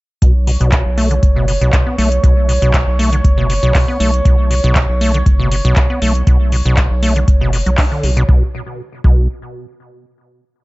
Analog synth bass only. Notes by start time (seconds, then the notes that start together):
0.22 B1
0.60 B1
0.86 B1
1.23 F#1
1.61 B1
1.98 B1
2.24 B1
2.62 B1
2.87 B1
3.24 F#1
3.63 B1
4.00 B1
4.25 B1
4.64 B1
4.89 B1
5.26 F#1
5.65 B1
6.02 B1
6.27 B1
6.65 B1
6.91 B1
7.28 F#1
7.66 B1
8.03 B1
8.29 B1
9.04 B1